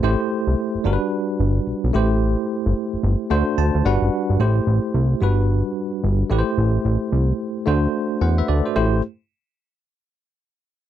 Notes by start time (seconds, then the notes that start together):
0.03 A1 A3 E4 G4 C5
0.47 C2
0.75 G1
0.84 G1 G3 D4 F#4 A#4
0.93 B4
1.40 G1
1.67 B1
1.84 B1
1.93 A1 A3 E4 G4 C5
2.66 G1
2.93 G1
3.03 G1
3.30 D2 A3 D4 F#4 C5
3.58 D2 A5
3.75 D2
3.85 G1 G3 D4 F#4 B4 F#5
4.02 F#1
4.30 G1
4.40 A1 A3 E4 G4 C5
4.67 A1
4.94 C2
5.21 G1 G3 D4 F#4 B4
6.03 G1
6.30 A1 A3 E4 G4 B4
6.39 C5
6.58 A1
6.85 A1
7.12 C2
7.66 D2 A3 D4 F#4 C5
8.21 E2 C5 F#5
8.38 B4 E5
8.48 D2 A4 D5
8.65 F#4 C5
8.76 A1 A3 E4 G4 C5